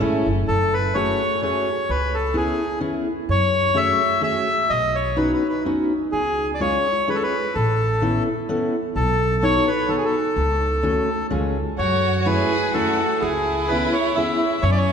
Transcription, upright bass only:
0.02 0.25 G#1 medium
0.26 0.46 F#1 medium
0.49 1.10 F#1 medium
1.89 2.50 C#2 medium
3.29 3.90 F#2 medium
4.70 5.32 B1 medium
6.13 6.74 C#2 medium
7.56 8.17 A1 medium
8.96 9.56 B1 medium
10.36 10.98 C#2 medium
11.31 11.62 C#2 medium
11.79 12.41 F#2 medium
13.22 13.84 C#2 medium
14.63 14.92 F#2 medium

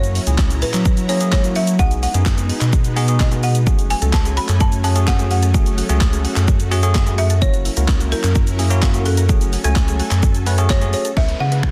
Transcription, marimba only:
0.00 0.64 C#5 medium
0.62 1.06 B4 medium
1.09 1.31 C#5 medium
1.32 1.57 C#5 medium
1.56 1.80 E5 loud
1.79 2.02 F#5 loud
2.03 2.46 F#5 loud
3.20 3.31 D#5 medium
3.43 3.92 F#5 loud
3.90 4.01 G#5 loud
4.14 4.38 A5 loud
4.37 4.61 B5 loud
4.61 4.71 A5 loud
4.84 5.06 A5 loud
5.07 5.29 F#5 medium
5.31 6.68 F#5 medium
7.18 7.42 E5 loud
7.42 8.08 C#5 loud
8.12 9.09 A#4 loud
9.06 10.66 A4 medium
10.70 10.92 C#5 medium
10.94 11.18 C#5 medium
11.17 11.41 E5 loud
11.40 11.71 F#5 loud

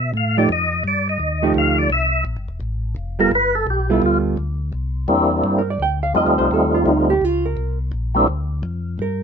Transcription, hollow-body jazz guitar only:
0.37 0.48 F3 medium
0.37 0.48 A3 medium
0.37 0.49 D#4 medium
0.37 0.49 G4 medium
1.42 1.88 F3 medium
1.42 1.88 A3 medium
1.42 1.88 D#4 medium
1.42 1.88 G4 medium
3.19 3.30 G3 medium
3.19 3.30 B3 medium
3.19 3.30 F4 medium
3.19 3.31 A4 medium
3.90 4.35 G3 medium
3.90 4.35 B3 medium
3.90 4.35 F4 medium
3.90 4.36 A4 medium
5.58 5.69 A#4 medium
5.70 5.80 D5 medium
5.82 6.03 G5 medium
6.03 6.15 F5 medium
6.17 6.38 D#5 medium
6.38 6.50 C5 medium
6.54 6.74 A4 medium
6.74 6.89 F4 medium
6.89 7.09 D#4 medium
7.10 7.25 G4 medium
7.25 7.45 F4 medium
7.46 7.78 A#4 medium
9.02 9.23 A#4 medium

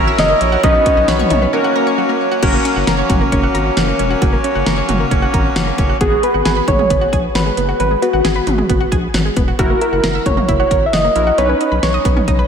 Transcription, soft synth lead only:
0.19 0.29 D#5 loud
0.30 0.43 D#5 loud
0.41 0.65 C#5 loud
0.64 1.10 D#5 loud
1.08 1.98 C#5 loud
6.01 6.25 G#4 loud
6.24 6.45 B4 loud
6.46 6.70 B4 loud
6.68 7.37 C#5 loud
7.35 7.79 B4 loud
7.80 8.04 B4 loud
8.02 9.37 F#4 medium
9.59 9.83 F#4 medium
9.81 10.26 A#4 loud
10.26 10.57 C#5 loud
10.60 10.88 C#5 loud
10.86 10.95 E5 medium
10.93 11.40 D#5 loud
11.38 11.51 C#5 loud
11.49 11.84 B4 loud
11.83 12.47 C#5 medium

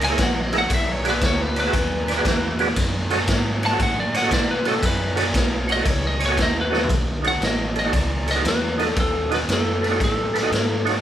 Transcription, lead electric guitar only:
0.04 0.22 G#5 loud
0.22 0.40 F#5 loud
0.40 0.55 D#5 medium
0.58 0.72 F#5 medium
0.74 0.92 E5 medium
0.92 1.06 C#5 medium
1.10 1.24 B4 medium
1.26 1.42 C#5 medium
1.42 1.57 B4 medium
1.60 3.09 B4 medium
3.66 3.81 A5 loud
3.83 3.98 F#5 medium
4.00 4.15 D5 medium
4.17 4.32 F#5 medium
4.34 4.49 D5 medium
4.51 4.66 B4 medium
4.69 4.86 A4 medium
4.86 5.17 B4 medium
5.72 5.90 D#5 loud
5.90 6.07 C#5 loud
6.07 6.22 D#5 loud
6.26 6.40 C#5 medium
6.42 6.57 D#5 loud
6.61 6.91 B4 loud
7.28 7.43 F#5 loud
7.45 7.78 D#5 medium
7.79 8.30 D5 medium
8.31 8.47 D#5 medium
8.48 8.94 B4 medium
9.00 9.33 A4 medium
9.34 9.39 B4 medium
9.53 10.03 A4 medium
10.04 10.84 A4 medium

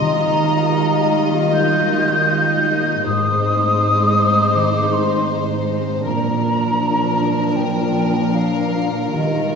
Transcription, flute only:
0.01 1.22 A#5 medium
1.54 3.02 G6 medium
3.06 4.57 D#6 medium
4.55 4.95 D6 medium
4.93 5.31 C6 medium
6.06 7.57 A#5 medium
7.56 8.36 G5 medium
8.35 9.15 F5 medium
9.15 9.55 D#5 medium

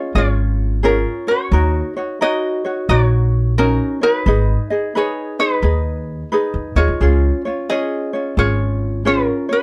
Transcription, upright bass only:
0.15 1.04 G#1 medium
1.52 1.80 D#2 loud
2.89 3.78 A#1 medium
4.26 4.55 G#1 medium
5.63 6.22 D#2 medium
6.54 6.74 F2 medium
6.76 6.87 D#2 medium
6.88 6.99 C#2 medium
7.01 7.29 C#2 medium
8.37 9.26 G#1 medium

